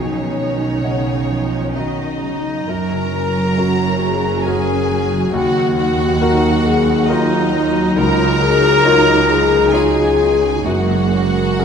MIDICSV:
0, 0, Header, 1, 10, 480
1, 0, Start_track
1, 0, Key_signature, 6, "major"
1, 0, Tempo, 920245
1, 1404, Tempo, 879765
1, 1405, Time_signature, 3, 2, 24, 8
1, 5244, Tempo, 930233
1, 6234, End_track
2, 0, Start_track
2, 0, Title_t, "Violin section"
2, 0, Program_c, 0, 48
2, 0, Note_on_c, 0, 73, 61
2, 896, Note_off_c, 0, 73, 0
2, 915, Note_on_c, 0, 75, 52
2, 1394, Note_off_c, 0, 75, 0
2, 1401, Note_on_c, 0, 82, 75
2, 2367, Note_off_c, 0, 82, 0
2, 2369, Note_on_c, 0, 80, 68
2, 2845, Note_on_c, 0, 78, 74
2, 2850, Note_off_c, 0, 80, 0
2, 3082, Note_off_c, 0, 78, 0
2, 3089, Note_on_c, 0, 78, 89
2, 3787, Note_off_c, 0, 78, 0
2, 3799, Note_on_c, 0, 75, 74
2, 4285, Note_off_c, 0, 75, 0
2, 4286, Note_on_c, 0, 82, 107
2, 5225, Note_off_c, 0, 82, 0
2, 5247, Note_on_c, 0, 80, 74
2, 5719, Note_on_c, 0, 78, 73
2, 5720, Note_off_c, 0, 80, 0
2, 6234, Note_off_c, 0, 78, 0
2, 6234, End_track
3, 0, Start_track
3, 0, Title_t, "French horn section"
3, 0, Program_c, 1, 60
3, 0, Note_on_c, 1, 63, 46
3, 1133, Note_off_c, 1, 63, 0
3, 1395, Note_on_c, 1, 70, 48
3, 1864, Note_off_c, 1, 70, 0
3, 1879, Note_on_c, 1, 66, 48
3, 2118, Note_on_c, 1, 68, 54
3, 2124, Note_off_c, 1, 66, 0
3, 2364, Note_off_c, 1, 68, 0
3, 2364, Note_on_c, 1, 70, 51
3, 2607, Note_off_c, 1, 70, 0
3, 2607, Note_on_c, 1, 66, 49
3, 2837, Note_off_c, 1, 66, 0
3, 2844, Note_on_c, 1, 66, 52
3, 3319, Note_on_c, 1, 70, 70
3, 3325, Note_off_c, 1, 66, 0
3, 3556, Note_off_c, 1, 70, 0
3, 3565, Note_on_c, 1, 68, 70
3, 3802, Note_off_c, 1, 68, 0
3, 3806, Note_on_c, 1, 54, 67
3, 4279, Note_off_c, 1, 54, 0
3, 4287, Note_on_c, 1, 65, 59
3, 4524, Note_off_c, 1, 65, 0
3, 4524, Note_on_c, 1, 68, 65
3, 4757, Note_on_c, 1, 70, 70
3, 4762, Note_off_c, 1, 68, 0
3, 4995, Note_off_c, 1, 70, 0
3, 5001, Note_on_c, 1, 68, 83
3, 5635, Note_off_c, 1, 68, 0
3, 5722, Note_on_c, 1, 70, 57
3, 6234, Note_off_c, 1, 70, 0
3, 6234, End_track
4, 0, Start_track
4, 0, Title_t, "Clarinet"
4, 0, Program_c, 2, 71
4, 0, Note_on_c, 2, 61, 49
4, 913, Note_on_c, 2, 63, 47
4, 920, Note_off_c, 2, 61, 0
4, 1404, Note_on_c, 2, 70, 69
4, 1413, Note_off_c, 2, 63, 0
4, 2217, Note_off_c, 2, 70, 0
4, 2372, Note_on_c, 2, 68, 71
4, 2830, Note_off_c, 2, 68, 0
4, 2850, Note_on_c, 2, 66, 76
4, 3085, Note_off_c, 2, 66, 0
4, 3088, Note_on_c, 2, 66, 76
4, 3787, Note_off_c, 2, 66, 0
4, 3804, Note_on_c, 2, 63, 80
4, 4285, Note_on_c, 2, 70, 107
4, 4294, Note_off_c, 2, 63, 0
4, 5239, Note_on_c, 2, 68, 73
4, 5247, Note_off_c, 2, 70, 0
4, 5716, Note_off_c, 2, 68, 0
4, 5719, Note_on_c, 2, 66, 65
4, 6234, Note_off_c, 2, 66, 0
4, 6234, End_track
5, 0, Start_track
5, 0, Title_t, "Violin section"
5, 0, Program_c, 3, 48
5, 0, Note_on_c, 3, 61, 50
5, 914, Note_off_c, 3, 61, 0
5, 916, Note_on_c, 3, 63, 43
5, 1404, Note_off_c, 3, 63, 0
5, 1407, Note_on_c, 3, 70, 58
5, 2351, Note_off_c, 3, 70, 0
5, 2370, Note_on_c, 3, 68, 56
5, 2850, Note_off_c, 3, 68, 0
5, 2852, Note_on_c, 3, 66, 70
5, 3079, Note_off_c, 3, 66, 0
5, 3086, Note_on_c, 3, 66, 71
5, 3786, Note_off_c, 3, 66, 0
5, 3802, Note_on_c, 3, 63, 72
5, 4287, Note_off_c, 3, 63, 0
5, 4288, Note_on_c, 3, 70, 100
5, 5226, Note_off_c, 3, 70, 0
5, 5250, Note_on_c, 3, 68, 59
5, 5712, Note_off_c, 3, 68, 0
5, 5719, Note_on_c, 3, 66, 68
5, 6234, Note_off_c, 3, 66, 0
5, 6234, End_track
6, 0, Start_track
6, 0, Title_t, "Grand piano"
6, 0, Program_c, 4, 0
6, 0, Note_on_c, 4, 35, 34
6, 53, Control_c, 4, 64, 127
6, 427, Note_off_c, 4, 35, 0
6, 437, Note_on_c, 4, 61, 25
6, 439, Note_on_c, 4, 78, 29
6, 442, Note_on_c, 4, 75, 27
6, 894, Note_off_c, 4, 61, 0
6, 895, Note_off_c, 4, 78, 0
6, 896, Note_off_c, 4, 75, 0
6, 916, Note_on_c, 4, 61, 28
6, 920, Note_on_c, 4, 66, 27
6, 923, Note_on_c, 4, 75, 30
6, 1383, Note_off_c, 4, 61, 0
6, 1385, Note_off_c, 4, 66, 0
6, 1386, Note_off_c, 4, 75, 0
6, 1402, Note_on_c, 4, 42, 39
6, 1415, Control_c, 4, 64, 0
6, 1494, Control_c, 4, 64, 127
6, 1875, Note_off_c, 4, 42, 0
6, 1885, Note_on_c, 4, 61, 35
6, 1889, Note_on_c, 4, 66, 38
6, 1890, Note_on_c, 4, 70, 40
6, 2345, Note_off_c, 4, 61, 0
6, 2347, Note_off_c, 4, 66, 0
6, 2347, Note_off_c, 4, 70, 0
6, 2368, Note_on_c, 4, 61, 35
6, 2369, Note_on_c, 4, 66, 41
6, 2372, Note_on_c, 4, 70, 45
6, 2828, Note_off_c, 4, 61, 0
6, 2828, Note_off_c, 4, 66, 0
6, 2830, Note_off_c, 4, 70, 0
6, 2847, Note_on_c, 4, 39, 56
6, 2861, Control_c, 4, 64, 0
6, 2953, Control_c, 4, 64, 127
6, 3312, Note_off_c, 4, 39, 0
6, 3324, Note_on_c, 4, 63, 49
6, 3327, Note_on_c, 4, 66, 47
6, 3330, Note_on_c, 4, 70, 51
6, 3778, Note_off_c, 4, 63, 0
6, 3780, Note_off_c, 4, 66, 0
6, 3781, Note_off_c, 4, 70, 0
6, 3804, Note_on_c, 4, 63, 44
6, 3806, Note_on_c, 4, 65, 45
6, 3807, Note_on_c, 4, 70, 54
6, 4266, Note_off_c, 4, 63, 0
6, 4267, Note_off_c, 4, 65, 0
6, 4267, Note_off_c, 4, 70, 0
6, 4290, Note_on_c, 4, 37, 53
6, 4296, Control_c, 4, 64, 0
6, 4400, Control_c, 4, 64, 127
6, 4749, Note_off_c, 4, 37, 0
6, 4762, Note_on_c, 4, 63, 50
6, 4764, Note_on_c, 4, 65, 49
6, 4767, Note_on_c, 4, 73, 49
6, 5223, Note_off_c, 4, 63, 0
6, 5224, Note_off_c, 4, 65, 0
6, 5226, Note_off_c, 4, 73, 0
6, 5245, Note_on_c, 4, 63, 40
6, 5247, Note_on_c, 4, 65, 44
6, 5250, Note_on_c, 4, 73, 47
6, 5699, Note_off_c, 4, 63, 0
6, 5699, Note_off_c, 4, 65, 0
6, 5701, Note_off_c, 4, 73, 0
6, 5722, Note_on_c, 4, 42, 51
6, 5729, Control_c, 4, 64, 0
6, 5816, Control_c, 4, 64, 127
6, 6191, Note_off_c, 4, 42, 0
6, 6205, Note_on_c, 4, 61, 41
6, 6207, Note_on_c, 4, 68, 40
6, 6211, Note_on_c, 4, 70, 40
6, 6234, Note_off_c, 4, 61, 0
6, 6234, Note_off_c, 4, 68, 0
6, 6234, Note_off_c, 4, 70, 0
6, 6234, End_track
7, 0, Start_track
7, 0, Title_t, "Harp"
7, 0, Program_c, 5, 46
7, 0, Note_on_c, 5, 47, 38
7, 0, Note_on_c, 5, 61, 26
7, 0, Note_on_c, 5, 63, 32
7, 0, Note_on_c, 5, 73, 37
7, 0, Note_on_c, 5, 75, 43
7, 78, Note_on_c, 5, 59, 29
7, 312, Note_off_c, 5, 63, 0
7, 318, Note_on_c, 5, 63, 28
7, 430, Note_off_c, 5, 73, 0
7, 436, Note_on_c, 5, 73, 32
7, 672, Note_off_c, 5, 75, 0
7, 678, Note_on_c, 5, 75, 35
7, 795, Note_on_c, 5, 66, 31
7, 908, Note_off_c, 5, 73, 0
7, 914, Note_on_c, 5, 73, 31
7, 1026, Note_off_c, 5, 63, 0
7, 1032, Note_on_c, 5, 63, 29
7, 1154, Note_on_c, 5, 54, 33
7, 1272, Note_off_c, 5, 59, 0
7, 1279, Note_on_c, 5, 59, 27
7, 1400, Note_on_c, 5, 42, 49
7, 1421, Note_off_c, 5, 47, 0
7, 1422, Note_off_c, 5, 59, 0
7, 1422, Note_off_c, 5, 63, 0
7, 1423, Note_off_c, 5, 75, 0
7, 1525, Note_on_c, 5, 49, 32
7, 1643, Note_off_c, 5, 54, 0
7, 1649, Note_on_c, 5, 54, 38
7, 1765, Note_off_c, 5, 66, 0
7, 1772, Note_on_c, 5, 66, 34
7, 1886, Note_off_c, 5, 73, 0
7, 1893, Note_on_c, 5, 73, 43
7, 1894, Note_off_c, 5, 61, 0
7, 2004, Note_off_c, 5, 66, 0
7, 2011, Note_on_c, 5, 66, 37
7, 2244, Note_off_c, 5, 66, 0
7, 2251, Note_on_c, 5, 66, 41
7, 2364, Note_off_c, 5, 73, 0
7, 2371, Note_on_c, 5, 73, 42
7, 2483, Note_off_c, 5, 66, 0
7, 2490, Note_on_c, 5, 66, 39
7, 2603, Note_off_c, 5, 54, 0
7, 2610, Note_on_c, 5, 54, 45
7, 2725, Note_off_c, 5, 49, 0
7, 2731, Note_on_c, 5, 49, 38
7, 2851, Note_on_c, 5, 51, 55
7, 2867, Note_off_c, 5, 42, 0
7, 2870, Note_off_c, 5, 49, 0
7, 2870, Note_off_c, 5, 73, 0
7, 2972, Note_on_c, 5, 63, 38
7, 3085, Note_off_c, 5, 54, 0
7, 3091, Note_on_c, 5, 54, 45
7, 3329, Note_on_c, 5, 75, 51
7, 3442, Note_off_c, 5, 66, 0
7, 3449, Note_on_c, 5, 66, 45
7, 3677, Note_off_c, 5, 66, 0
7, 3683, Note_on_c, 5, 66, 56
7, 3793, Note_off_c, 5, 75, 0
7, 3799, Note_on_c, 5, 75, 55
7, 4037, Note_off_c, 5, 54, 0
7, 4044, Note_on_c, 5, 54, 54
7, 4159, Note_off_c, 5, 63, 0
7, 4165, Note_on_c, 5, 63, 42
7, 4287, Note_on_c, 5, 49, 64
7, 4305, Note_off_c, 5, 66, 0
7, 4306, Note_off_c, 5, 51, 0
7, 4306, Note_off_c, 5, 54, 0
7, 4406, Note_on_c, 5, 61, 47
7, 4524, Note_on_c, 5, 56, 53
7, 4754, Note_off_c, 5, 75, 0
7, 4761, Note_on_c, 5, 75, 56
7, 4879, Note_on_c, 5, 68, 49
7, 5003, Note_on_c, 5, 77, 54
7, 5118, Note_off_c, 5, 68, 0
7, 5125, Note_on_c, 5, 68, 54
7, 5238, Note_off_c, 5, 75, 0
7, 5360, Note_on_c, 5, 65, 44
7, 5474, Note_off_c, 5, 56, 0
7, 5480, Note_on_c, 5, 56, 49
7, 5595, Note_off_c, 5, 61, 0
7, 5602, Note_on_c, 5, 61, 38
7, 5721, Note_on_c, 5, 42, 58
7, 5738, Note_off_c, 5, 49, 0
7, 5738, Note_off_c, 5, 63, 0
7, 5738, Note_off_c, 5, 65, 0
7, 5739, Note_off_c, 5, 77, 0
7, 5843, Note_on_c, 5, 49, 42
7, 5965, Note_on_c, 5, 58, 46
7, 6081, Note_off_c, 5, 68, 0
7, 6087, Note_on_c, 5, 68, 42
7, 6208, Note_on_c, 5, 73, 44
7, 6234, Note_off_c, 5, 42, 0
7, 6234, Note_off_c, 5, 49, 0
7, 6234, Note_off_c, 5, 56, 0
7, 6234, Note_off_c, 5, 58, 0
7, 6234, Note_off_c, 5, 61, 0
7, 6234, Note_off_c, 5, 68, 0
7, 6234, Note_off_c, 5, 73, 0
7, 6234, End_track
8, 0, Start_track
8, 0, Title_t, "Viola section"
8, 0, Program_c, 6, 48
8, 0, Note_on_c, 6, 51, 36
8, 0, Note_on_c, 6, 63, 39
8, 1271, Note_off_c, 6, 63, 0
8, 1292, Note_off_c, 6, 51, 0
8, 1400, Note_on_c, 6, 54, 50
8, 1401, Note_on_c, 6, 61, 50
8, 2826, Note_off_c, 6, 54, 0
8, 2827, Note_off_c, 6, 61, 0
8, 2848, Note_on_c, 6, 54, 68
8, 2850, Note_on_c, 6, 63, 57
8, 5697, Note_off_c, 6, 54, 0
8, 5698, Note_off_c, 6, 63, 0
8, 5717, Note_on_c, 6, 58, 55
8, 5719, Note_on_c, 6, 56, 56
8, 6134, Note_off_c, 6, 58, 0
8, 6135, Note_off_c, 6, 56, 0
8, 6201, Note_on_c, 6, 61, 63
8, 6234, Note_off_c, 6, 61, 0
8, 6234, End_track
9, 0, Start_track
9, 0, Title_t, "Cello section"
9, 0, Program_c, 7, 48
9, 0, Note_on_c, 7, 47, 42
9, 392, Note_off_c, 7, 47, 0
9, 436, Note_on_c, 7, 49, 39
9, 661, Note_off_c, 7, 49, 0
9, 676, Note_on_c, 7, 53, 45
9, 914, Note_on_c, 7, 51, 37
9, 915, Note_off_c, 7, 53, 0
9, 1156, Note_on_c, 7, 49, 35
9, 1159, Note_off_c, 7, 51, 0
9, 1401, Note_on_c, 7, 42, 52
9, 1402, Note_off_c, 7, 49, 0
9, 2826, Note_off_c, 7, 42, 0
9, 2848, Note_on_c, 7, 39, 64
9, 4285, Note_off_c, 7, 39, 0
9, 4285, Note_on_c, 7, 37, 70
9, 5697, Note_off_c, 7, 37, 0
9, 5718, Note_on_c, 7, 42, 59
9, 6234, Note_off_c, 7, 42, 0
9, 6234, End_track
10, 0, Start_track
10, 0, Title_t, "Double bass section"
10, 0, Program_c, 8, 48
10, 0, Note_on_c, 8, 35, 40
10, 1293, Note_off_c, 8, 35, 0
10, 1400, Note_on_c, 8, 30, 46
10, 2826, Note_off_c, 8, 30, 0
10, 2847, Note_on_c, 8, 39, 58
10, 4285, Note_off_c, 8, 39, 0
10, 4285, Note_on_c, 8, 37, 67
10, 5698, Note_off_c, 8, 37, 0
10, 5721, Note_on_c, 8, 30, 57
10, 6234, Note_off_c, 8, 30, 0
10, 6234, End_track
0, 0, End_of_file